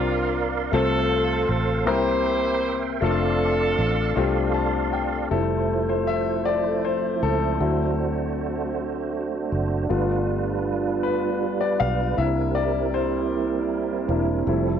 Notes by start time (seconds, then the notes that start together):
Already playing: C2 C3 A#3 C4 D4 F4 G4 A#4 D5 F5 C6
0.71 C2 C3 A3 C4 F4 A4 C5
1.49 A1 A4
1.85 C2 C3 A#3 C4 E4 G4 A#4 C5 E5 G5
3.01 F1 A3 C4 D4 F4 A4 D5 F5
3.78 A1
4.16 C2 A3 C4 D4 F4 G4
4.54 A5
4.93 G5
5.30 F1 F3 G3 A3 C4 E4 A4 C5
5.89 C5
6.07 E5
6.46 D5
6.85 C5
7.23 C#2 A4
7.60 D2 F#3 A3 C4 D4 E4 F#4
9.52 F#1
9.89 G1 G3 A3 B3 F4 B4
11.03 B4
11.61 D5
11.80 B1 F5
12.16 C2 A#3 C4 D4 E4 A#4 E5
12.55 D5
12.94 C5
14.09 E1 A#3 D4 E4
14.47 F1 F3 G3 A3 E4 A4